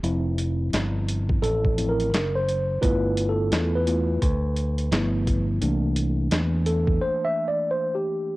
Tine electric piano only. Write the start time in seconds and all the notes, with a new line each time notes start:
0.03 F3 C4 E4
1.42 A4
1.77 F3 C4 E4
1.89 A#4
2.35 C5
2.81 A3 B3 E4 F4 B4
3.29 A4
3.75 B4
3.86 A3 B3 E4 F4
4.91 F3 A3 B3 E4
5.61 E3 A3 A#3 D4
6.66 A4
7.01 C5
7.25 E5
7.48 D5
7.71 C5
7.95 G4